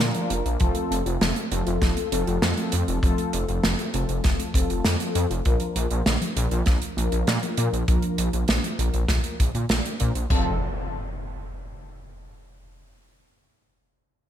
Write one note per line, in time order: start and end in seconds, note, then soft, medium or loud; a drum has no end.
0.00 0.11 A#2 loud
0.00 0.11 D3 medium
0.00 0.12 F3 loud
0.00 0.12 A#3 medium
0.00 0.12 D4 medium
0.00 0.12 F4 medium
0.00 0.12 A#4 loud
0.00 snare loud
0.00 closed hi-hat medium
0.14 0.30 F3 loud
0.14 0.57 F3 medium
0.14 0.57 A#3 medium
0.14 0.57 D4 medium
0.14 0.57 F4 medium
0.14 0.57 A#4 loud
0.14 closed hi-hat medium
0.30 0.41 F1 medium
0.30 0.41 A#3 medium
0.30 closed hi-hat loud
0.46 0.56 A#1 medium
0.46 0.57 D4 medium
0.46 closed hi-hat medium
0.60 0.71 F1 loud
0.60 0.72 F3 medium
0.60 1.02 F3 loud
0.60 1.02 A3 medium
0.60 1.02 C4 medium
0.60 1.02 F4 medium
0.60 1.02 A4 loud
0.60 kick loud
0.60 closed hi-hat medium
0.75 0.87 A3 medium
0.75 closed hi-hat medium
0.91 1.02 F1 medium
0.91 1.05 C4 medium
0.91 closed hi-hat medium
1.06 1.17 F1 medium
1.06 1.48 F3 medium
1.06 1.48 A3 medium
1.06 1.48 C4 medium
1.06 1.17 F4 medium
1.06 1.48 F4 medium
1.06 1.48 A4 medium
1.06 closed hi-hat medium
1.21 1.32 F1 loud
1.21 1.32 F3 medium
1.21 snare loud
1.21 closed hi-hat medium
1.36 1.51 A3 loud
1.36 closed hi-hat medium
1.51 1.62 F1 loud
1.51 2.09 F3 medium
1.51 2.08 A3 medium
1.51 1.63 C4 medium
1.51 2.09 C4 medium
1.51 2.08 F4 medium
1.51 2.08 A4 medium
1.51 closed hi-hat medium
1.67 1.77 F1 medium
1.67 1.78 F4 medium
1.67 closed hi-hat medium
1.82 1.92 F1 loud
1.82 1.88 F3 medium
1.82 kick loud
1.82 snare medium
1.82 closed hi-hat medium
1.97 2.08 A3 medium
1.97 closed hi-hat medium
2.12 2.23 F1 medium
2.12 2.54 F3 loud
2.12 2.54 A3 medium
2.12 2.19 C4 loud
2.12 2.54 C4 medium
2.12 2.54 F4 medium
2.12 2.54 A4 loud
2.12 closed hi-hat loud
2.27 2.38 F1 medium
2.27 2.34 F4 medium
2.27 closed hi-hat medium
2.42 2.53 F2 loud
2.42 2.53 F3 medium
2.42 snare loud
2.42 closed hi-hat medium
2.57 2.99 F3 medium
2.57 2.72 A3 loud
2.57 2.99 A3 medium
2.57 2.99 C4 medium
2.57 2.99 F4 medium
2.57 2.99 A4 loud
2.57 closed hi-hat medium
2.72 2.83 F2 loud
2.72 2.84 C4 medium
2.72 closed hi-hat loud
2.88 2.99 F1 medium
2.88 2.99 F4 medium
2.88 closed hi-hat medium
3.03 3.14 F1 loud
3.03 3.14 F3 medium
3.03 3.45 F3 loud
3.03 3.45 A3 medium
3.03 3.45 C4 medium
3.03 3.45 F4 medium
3.03 3.45 A4 loud
3.03 kick loud
3.03 closed hi-hat medium
3.18 3.29 A3 medium
3.18 closed hi-hat medium
3.33 3.44 F1 medium
3.33 3.48 C4 medium
3.33 closed hi-hat medium
3.49 3.59 F1 medium
3.49 3.90 F3 medium
3.49 3.90 A3 medium
3.49 3.90 C4 medium
3.49 3.60 F4 medium
3.49 3.90 F4 medium
3.49 3.90 A4 medium
3.49 closed hi-hat medium
3.64 3.74 F1 loud
3.64 3.75 F3 medium
3.64 snare loud
3.64 closed hi-hat medium
3.79 3.93 A3 loud
3.79 closed hi-hat medium
3.94 4.05 F1 loud
3.94 4.51 F3 medium
3.94 4.51 A3 medium
3.94 4.05 C4 medium
3.94 4.51 C4 medium
3.94 4.51 F4 medium
3.94 4.51 A4 medium
3.94 closed hi-hat medium
4.09 4.20 F1 medium
4.09 4.20 F4 medium
4.09 closed hi-hat medium
4.24 4.35 F1 loud
4.24 4.31 F3 medium
4.24 kick loud
4.24 snare medium
4.24 closed hi-hat medium
4.39 4.51 A3 medium
4.39 closed hi-hat medium
4.54 4.65 F1 loud
4.54 4.96 F3 loud
4.54 4.96 A3 medium
4.54 4.61 C4 loud
4.54 4.96 C4 medium
4.54 4.96 F4 medium
4.54 4.96 A4 loud
4.54 kick loud
4.54 closed hi-hat loud
4.70 4.80 F1 medium
4.70 4.76 F4 medium
4.70 closed hi-hat medium
4.85 4.96 F2 loud
4.85 4.96 F3 medium
4.85 snare loud
4.85 closed hi-hat medium
5.00 5.42 F3 medium
5.00 5.42 A3 medium
5.00 5.15 A3 loud
5.00 5.42 C4 medium
5.00 5.42 F4 medium
5.00 5.42 A4 loud
5.00 closed hi-hat medium
5.15 5.26 F2 loud
5.15 5.26 C4 medium
5.15 closed hi-hat loud
5.30 5.41 F1 medium
5.30 5.41 F4 medium
5.30 closed hi-hat medium
5.45 5.56 A#1 loud
5.45 5.57 D3 medium
5.45 5.87 F3 loud
5.45 5.87 A#3 medium
5.45 5.87 D4 medium
5.45 5.87 F4 medium
5.45 5.87 A#4 loud
5.45 kick loud
5.45 closed hi-hat medium
5.60 5.72 F3 medium
5.60 closed hi-hat medium
5.76 5.86 A#1 medium
5.76 5.90 A#3 medium
5.76 closed hi-hat loud
5.91 6.02 A#1 medium
5.91 6.33 F3 medium
5.91 6.33 A#3 medium
5.91 6.02 D4 medium
5.91 6.33 D4 medium
5.91 6.33 F4 medium
5.91 6.33 A#4 medium
5.91 closed hi-hat medium
6.06 6.17 A#1 loud
6.06 6.17 D3 medium
6.06 snare loud
6.06 closed hi-hat medium
6.21 6.36 F3 loud
6.21 closed hi-hat medium
6.36 6.47 A#1 loud
6.36 6.93 F3 medium
6.36 6.47 A#3 medium
6.36 6.93 A#3 medium
6.36 6.93 D4 medium
6.36 6.93 F4 medium
6.36 6.93 A#4 loud
6.36 closed hi-hat loud
6.51 6.62 A#1 medium
6.51 6.63 D4 medium
6.51 closed hi-hat medium
6.66 6.78 A#1 loud
6.66 6.73 D3 medium
6.66 kick loud
6.66 snare medium
6.66 closed hi-hat medium
6.82 6.93 F3 medium
6.82 closed hi-hat medium
6.97 7.08 A#1 medium
6.97 7.39 F3 loud
6.97 7.04 A#3 loud
6.97 7.39 A#3 medium
6.97 7.39 D4 medium
6.97 7.39 F4 medium
6.97 7.39 A#4 loud
6.97 closed hi-hat medium
7.12 7.23 A#1 medium
7.12 7.19 D4 medium
7.12 closed hi-hat medium
7.27 7.38 A#2 loud
7.27 7.38 D3 medium
7.27 snare loud
7.27 closed hi-hat medium
7.42 7.57 F3 loud
7.42 7.84 F3 medium
7.42 7.84 A#3 medium
7.42 7.84 D4 medium
7.42 7.84 F4 medium
7.42 7.84 A#4 loud
7.42 closed hi-hat medium
7.57 7.68 A#2 medium
7.57 closed hi-hat loud
7.73 7.83 A#1 medium
7.73 7.84 D4 medium
7.73 closed hi-hat medium
7.88 7.99 A#1 loud
7.88 7.99 D3 medium
7.88 8.30 F3 loud
7.88 8.30 A#3 medium
7.88 8.30 D4 medium
7.88 8.30 F4 medium
7.88 8.30 A#4 loud
7.88 kick loud
7.88 closed hi-hat medium
8.02 8.14 F3 medium
8.02 closed hi-hat medium
8.18 8.29 A#1 loud
8.18 8.33 A#3 medium
8.18 closed hi-hat loud
8.33 8.44 A#1 medium
8.33 8.75 F3 medium
8.33 8.75 A#3 medium
8.33 8.44 D4 medium
8.33 8.75 D4 medium
8.33 8.75 F4 medium
8.33 8.75 A#4 medium
8.33 closed hi-hat medium
8.48 8.59 A#1 loud
8.48 8.60 D3 medium
8.48 snare loud
8.48 closed hi-hat medium
8.64 8.78 F3 loud
8.64 closed hi-hat medium
8.79 8.89 A#1 medium
8.79 9.36 F3 medium
8.79 9.36 A#3 medium
8.79 8.90 A#3 medium
8.79 9.36 D4 medium
8.79 9.36 F4 medium
8.79 9.36 A#4 loud
8.79 closed hi-hat loud
8.94 9.05 A#1 medium
8.94 9.05 D4 medium
8.94 closed hi-hat medium
9.08 9.20 A#1 loud
9.08 9.16 D3 medium
9.08 kick loud
9.08 snare medium
9.08 closed hi-hat medium
9.24 9.35 F3 medium
9.24 closed hi-hat medium
9.39 9.50 A#1 loud
9.39 9.53 D3 medium
9.39 kick medium
9.39 closed hi-hat medium
9.55 9.65 A#2 medium
9.55 9.69 D3 medium
9.55 closed hi-hat medium
9.69 9.80 A#1 loud
9.69 9.96 F3 medium
9.69 9.81 A#3 medium
9.69 9.96 A#3 medium
9.69 9.96 D4 medium
9.69 9.96 F4 medium
9.69 9.96 D5 medium
9.69 snare loud
9.69 closed hi-hat medium
9.85 9.96 F4 medium
9.85 closed hi-hat medium
10.00 10.11 A#2 loud
10.00 10.11 F3 medium
10.00 10.11 A#3 medium
10.00 10.11 D4 medium
10.00 10.11 F4 medium
10.00 10.11 C5 loud
10.00 10.11 D5 medium
10.00 kick medium
10.00 closed hi-hat medium
10.15 10.26 A#1 medium
10.15 10.30 F4 medium
10.15 closed hi-hat medium
10.30 10.58 F1 medium
10.30 10.58 F3 loud
10.30 10.53 F3 medium
10.30 10.53 A3 medium
10.30 10.53 C4 medium
10.30 10.53 F4 medium
10.30 10.53 A4 loud
10.30 kick loud
10.30 splash medium
10.30 impact medium